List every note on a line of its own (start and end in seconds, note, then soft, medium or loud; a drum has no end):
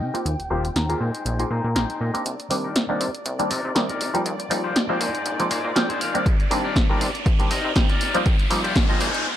0.00 0.11 C3 medium
0.00 0.14 D#4 medium
0.00 0.14 A#4 medium
0.00 0.15 D#5 medium
0.00 2.27 G5 medium
0.00 shaker medium
0.14 0.48 A#3 medium
0.14 0.48 C4 medium
0.14 0.48 D#4 medium
0.14 0.48 F4 medium
0.14 0.48 G4 medium
0.14 closed hi-hat medium
0.26 0.36 D#2 medium
0.26 closed hi-hat medium
0.39 0.49 D#1 soft
0.39 closed hi-hat soft
0.50 0.70 D#1 medium
0.50 0.86 A#3 medium
0.50 0.86 C4 medium
0.50 0.86 D#4 medium
0.50 0.64 F4 medium
0.50 0.86 F4 medium
0.50 0.65 G4 medium
0.50 0.86 G4 medium
0.50 0.65 C5 loud
0.50 shaker medium
0.65 closed hi-hat soft
0.76 0.95 D#2 medium
0.76 0.97 A#5 medium
0.76 muted clean electric guitar stroke soft
0.76 snare loud
0.76 closed hi-hat medium
0.89 1.08 A#3 medium
0.89 1.08 C4 medium
0.89 1.08 D#4 medium
0.89 1.08 F4 medium
0.89 1.01 F4 medium
0.89 1.01 G4 medium
0.89 1.08 G#4 medium
0.89 1.00 C5 medium
0.89 closed hi-hat soft
1.00 1.11 A#2 loud
1.00 1.42 D#4 medium
1.00 1.42 G#4 medium
1.00 1.42 C5 loud
1.00 shaker medium
1.15 closed hi-hat soft
1.26 1.45 A#1 loud
1.26 closed hi-hat medium
1.39 1.50 A#3 medium
1.39 1.50 C4 medium
1.39 1.50 D#4 medium
1.39 1.50 F4 medium
1.39 1.50 G#4 medium
1.39 closed hi-hat soft
1.51 1.61 A#2 medium
1.51 1.64 D#4 loud
1.51 1.64 G#4 medium
1.51 1.65 C5 loud
1.51 2.01 A#5 medium
1.51 shaker medium
1.64 1.77 A#2 loud
1.64 shaker soft
1.75 1.86 A#1 medium
1.75 1.88 A#3 medium
1.75 1.89 C4 medium
1.75 1.89 D#4 medium
1.75 2.15 D#4 medium
1.75 1.89 F4 medium
1.75 2.15 G#4 medium
1.75 1.89 A#4 medium
1.75 2.15 C5 medium
1.75 1.99 G5 medium
1.75 snare loud
1.75 closed hi-hat medium
1.90 closed hi-hat soft
2.00 2.11 A#2 medium
2.00 2.24 D#5 medium
2.00 shaker medium
2.14 2.48 A#3 medium
2.14 2.48 C4 medium
2.14 2.48 D4 medium
2.14 2.48 D#4 medium
2.14 2.48 G4 medium
2.14 closed hi-hat medium
2.25 2.36 C2 loud
2.25 9.26 D5 medium
2.25 closed hi-hat medium
2.25 riser medium
2.39 muted clean electric guitar stroke soft
2.39 closed hi-hat soft
2.50 2.70 C3 medium
2.50 2.86 D#3 medium
2.50 2.86 G3 medium
2.50 2.86 A#3 medium
2.50 2.86 C4 medium
2.50 2.86 D4 medium
2.50 open hi-hat medium
2.64 2.76 D#4 loud
2.64 2.76 A#4 medium
2.64 2.76 D5 loud
2.76 2.95 C2 medium
2.76 snare loud
2.76 closed hi-hat medium
2.89 3.07 D#3 medium
2.89 3.08 G3 medium
2.89 3.08 A#3 medium
2.89 3.08 C4 medium
2.89 3.08 D4 loud
2.89 3.08 D#4 medium
2.89 3.08 A#4 medium
2.89 3.08 D5 medium
3.00 3.11 C3 loud
3.00 open hi-hat medium
3.15 closed hi-hat soft
3.25 3.45 C2 loud
3.25 muted clean electric guitar stroke soft
3.25 closed hi-hat medium
3.39 3.50 D#3 medium
3.39 3.50 G3 medium
3.39 3.50 A#3 medium
3.39 3.50 C4 medium
3.39 3.50 D4 medium
3.39 closed hi-hat soft
3.50 3.61 C3 medium
3.50 3.70 D#4 medium
3.50 3.70 A#4 loud
3.50 3.70 D5 loud
3.50 open hi-hat loud
3.65 3.73 C3 medium
3.75 3.88 D#3 medium
3.75 3.88 G3 medium
3.75 3.89 A#3 medium
3.75 3.89 C4 medium
3.75 3.89 D#4 medium
3.75 snare loud
3.75 closed hi-hat medium
3.89 4.14 D#4 medium
3.89 4.14 A#4 medium
3.89 4.14 D5 medium
3.89 closed hi-hat soft
4.01 4.11 C3 medium
4.01 open hi-hat loud
4.14 4.48 F3 medium
4.14 4.48 G3 medium
4.14 4.48 A#3 medium
4.14 4.48 C4 medium
4.14 4.48 D#4 medium
4.14 closed hi-hat medium
4.26 4.36 D#2 medium
4.26 closed hi-hat medium
4.39 4.49 D#1 soft
4.39 muted clean electric guitar stroke soft
4.39 closed hi-hat soft
4.50 4.70 D#1 medium
4.50 4.86 F3 medium
4.50 4.86 G3 medium
4.50 4.86 A#3 medium
4.50 4.86 C4 medium
4.50 4.86 D#4 medium
4.50 open hi-hat loud
4.64 4.76 F4 loud
4.64 4.76 G4 medium
4.64 4.76 C5 loud
4.75 4.95 D#2 medium
4.75 snare loud
4.75 closed hi-hat medium
4.89 5.08 F3 medium
4.89 5.08 G#3 medium
4.89 5.08 A#3 medium
4.89 5.08 C4 medium
4.89 5.08 D#4 medium
4.89 5.01 F4 medium
4.89 5.00 G4 medium
4.89 4.99 C5 loud
5.01 5.11 A#2 loud
5.01 5.42 D#4 medium
5.01 5.42 G#4 medium
5.01 5.42 C5 loud
5.01 open hi-hat loud
5.15 closed hi-hat soft
5.26 5.45 A#1 loud
5.26 closed hi-hat medium
5.39 5.50 F3 medium
5.39 5.50 G#3 medium
5.39 5.50 A#3 medium
5.39 5.50 C4 medium
5.39 5.50 D#4 medium
5.39 closed hi-hat medium
5.51 5.61 A#2 medium
5.51 5.70 D#4 loud
5.51 5.70 G#4 medium
5.51 5.70 C5 loud
5.51 open hi-hat loud
5.64 5.73 A#2 medium
5.76 6.02 A#1 loud
5.76 5.89 F3 medium
5.76 5.89 G#3 medium
5.76 5.89 A#3 medium
5.76 5.89 C4 medium
5.76 5.89 F4 medium
5.76 5.99 G5 medium
5.76 snare loud
5.76 closed hi-hat medium
5.89 6.14 D#4 medium
5.89 6.14 G#4 medium
5.89 6.14 C5 loud
5.89 closed hi-hat soft
6.01 6.11 A#2 medium
6.01 6.24 F5 medium
6.01 open hi-hat loud
6.14 6.48 D#3 medium
6.14 6.48 G3 medium
6.14 6.48 A#3 medium
6.14 6.48 C4 medium
6.14 6.48 D4 medium
6.14 closed hi-hat medium
6.26 6.36 C2 loud
6.26 kick loud
6.26 closed hi-hat medium
6.39 muted clean electric guitar stroke soft
6.39 closed hi-hat soft
6.51 6.70 C3 medium
6.51 6.86 D#3 medium
6.51 6.86 G3 medium
6.51 6.86 A#3 medium
6.51 6.86 C4 medium
6.51 6.87 D4 medium
6.51 open hi-hat loud
6.64 6.76 D#4 loud
6.64 6.76 A#4 medium
6.64 6.76 D5 loud
6.76 6.95 C2 medium
6.76 kick loud
6.76 snare loud
6.76 closed hi-hat medium
6.89 7.08 D#3 medium
6.89 7.08 G3 medium
6.89 7.08 A#3 medium
6.89 7.08 C4 medium
6.89 7.08 D4 loud
6.89 7.08 D#4 medium
6.89 7.08 A#4 medium
6.89 7.08 D5 loud
7.01 7.11 C3 loud
7.01 open hi-hat loud
7.15 closed hi-hat soft
7.25 7.45 C2 loud
7.25 muted clean electric guitar stroke soft
7.25 kick loud
7.25 closed hi-hat medium
7.39 7.50 D#3 medium
7.39 7.50 G3 medium
7.39 7.50 A#3 medium
7.39 7.50 C4 medium
7.39 7.50 D4 loud
7.39 closed hi-hat medium
7.50 7.61 C3 medium
7.50 7.70 D#4 loud
7.50 7.70 A#4 loud
7.50 7.70 D#5 loud
7.50 open hi-hat loud
7.64 7.73 C3 medium
7.76 8.03 C2 loud
7.76 7.89 D#3 medium
7.76 7.89 G3 medium
7.76 7.89 A#3 medium
7.76 7.89 C4 medium
7.76 7.89 D#4 loud
7.76 kick loud
7.76 snare loud
7.76 closed hi-hat medium
7.89 8.14 D#4 medium
7.89 8.15 A#4 medium
7.89 8.15 D5 loud
7.89 closed hi-hat soft
8.01 8.11 C3 medium
8.01 open hi-hat loud
8.14 8.48 F3 medium
8.14 8.48 G3 medium
8.14 8.48 A#3 medium
8.14 8.48 C4 medium
8.14 8.48 D#4 loud
8.14 closed hi-hat medium
8.26 8.36 D#2 loud
8.26 kick loud
8.26 closed hi-hat medium
8.26 noise sweep medium
8.39 8.49 D#1 soft
8.39 muted clean electric guitar stroke soft
8.39 closed hi-hat soft
8.50 8.86 F3 medium
8.50 8.86 G3 medium
8.50 8.86 A#3 medium
8.50 8.86 C4 medium
8.50 8.86 D#4 loud
8.50 open hi-hat loud
8.64 8.76 F4 loud
8.64 8.76 G4 loud
8.64 8.76 C5 loud
8.64 closed hi-hat soft
8.76 8.95 D#2 loud
8.76 kick loud
8.76 snare loud
8.76 closed hi-hat medium
8.89 9.08 F3 medium
8.89 9.08 G#3 medium
8.89 9.08 A#3 medium
8.89 9.08 C4 medium
8.89 9.08 D#4 loud
8.89 9.00 F4 medium
8.89 9.01 G4 medium
8.89 9.01 D#5 loud
9.00 9.11 A#2 loud
9.00 9.26 D#4 medium
9.00 9.26 G#4 medium
9.00 9.26 C5 loud
9.00 open hi-hat loud
9.14 closed hi-hat soft